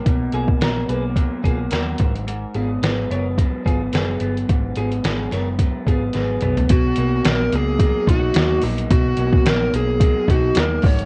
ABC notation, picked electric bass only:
X:1
M:4/4
L:1/16
Q:"Swing 16ths" 1/4=108
K:Blyd
V:1 name="Picked electric bass" clef=bass
B,,,2 B,,,2 A,,,2 B,,,3 z B,,,2 D,,2 G,,,2- | G,,,2 G,,,2 G,,,2 F,,,3 z G,,,2 F,,,2 =G,,,2 | G,,,2 G,,,2 G,,,2 F,,,3 z G,,,2 G,,,2 B,,,2 | B,,,2 B,,,2 A,,,2 C,,3 z B,,,2 D,,2 A,,,2 |
B,,,2 B,,,2 A,,,2 B,,,3 z B,,,2 D,,2 G,,,2 |]